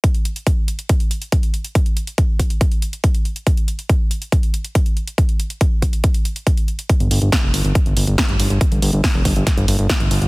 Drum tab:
HH |xxxxx-xxxxxxxxxx|xxxxx-xxxxxxxxxx|xxxxx-xxxxxxxxxx|xxxxx-xxxxxxxxxx|
SD |----------------|----------------|----------------|----------------|
BD |o---o---o---o---|o---o-o-o---o---|o---o---o---o---|o---o-o-o---o---|

HH |xxoxx-oxxxoxxxox|xxoxo-oxxxoxxxox|
SD |----o-------o---|----o---o---o---|
BD |o---o---o---o---|o---o-o-o---o---|